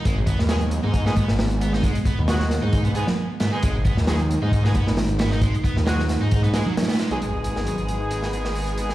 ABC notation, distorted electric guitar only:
X:1
M:4/4
L:1/16
Q:"Swing 16ths" 1/4=134
K:G#m
V:1 name="Distorted electric guitar"
G, z B, z F, z2 D2 B, B, z3 B, D | G, z B, z F, z2 D2 B, B, z3 B, D | G, z B, z F, z2 D2 B, B, z3 B, D | G, z B, z F, z2 D2 B, G, F, z B, G, F, |
G, z B, z F, z2 D2 B, B, z3 B, D |]